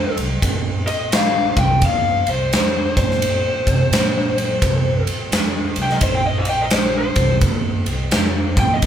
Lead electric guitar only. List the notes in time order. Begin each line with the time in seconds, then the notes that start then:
Already playing: C5
0.87 D#5
1.15 F5
1.59 G5
1.85 F5
2.29 C5
2.97 C5
5.83 G5
5.92 D#5
6.04 C5
6.15 G5
6.27 D#5
6.38 C5
6.50 G5
6.61 D#5
6.74 C5
6.98 C5
8.60 G5
8.74 D#5